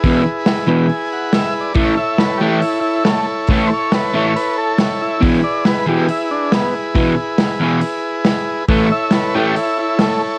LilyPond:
<<
  \new Staff \with { instrumentName = "Transistor combo organ" } { \time 4/4 \key e \major \tempo 4 = 139 << { r4. b''8 gis''8 fis''8 e''8 d''8 | r1 | r1 | r1 |
r1 | r1 | } \\ { <e' gis' b'>1 | <e' a' cis''>1~ | <e' a' cis''>1 | <e' gis' b'>1~ |
<e' gis' b'>1 | <e' a' cis''>1 | } >> }
  \new Staff \with { instrumentName = "Transistor combo organ" } { \time 4/4 \key e \major r1 | r8 e''8 b'8 g'8 e'8 e'8 a8 r8 | r8 <c'' cis''>8 b'8 cis''8 b'8 a'8 r8 e'8 | r8 d''8 b'8 g'8 e'8 d'8 b8 r8 |
r1 | r8 e''8 b'8 g'8 e'8 e'8 a8 r8 | }
  \new Staff \with { instrumentName = "Overdriven electric guitar" } { \clef bass \time 4/4 \key e \major <e, b, e>8 r4 <e, b, e>8 r2 | <a, e a>8 r4 <a, e a>8 r2 | <a, e a>8 r4 <a, e a>8 r2 | <e, b, e>8 r4 <e, b, e>8 r2 |
<e, b, e>8 r4 <e, b, e>8 r2 | <a, e a>8 r4 <a, e a>8 r2 | }
  \new DrumStaff \with { instrumentName = "Drums" } \drummode { \time 4/4 <hho bd>4 <hho sn>4 hho4 <hho sn>4 | <hho bd>4 <hho sn>4 hho4 <hho sn>4 | <hho bd>4 <hho sn>4 hho4 <hho sn>4 | <hho bd>4 <hho sn>4 hho4 <hho sn>4 |
<hho bd>4 <hho sn>4 hho4 <hho sn>4 | <hho bd>4 <hho sn>4 hho4 <hho sn>4 | }
>>